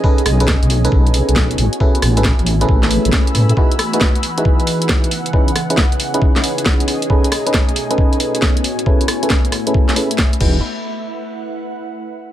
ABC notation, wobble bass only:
X:1
M:4/4
L:1/16
Q:"Swing 16ths" 1/4=136
K:E
V:1 name="Wobble bass" clef=bass
z2 B,,,3 B,,,3 B,,,3 B,,,3 A,,, z | z2 A,,,3 A,,,3 A,,,3 A,,, z2 A,, z | z16 | z16 |
z16 | z12 z2 E,,,2 | z16 |]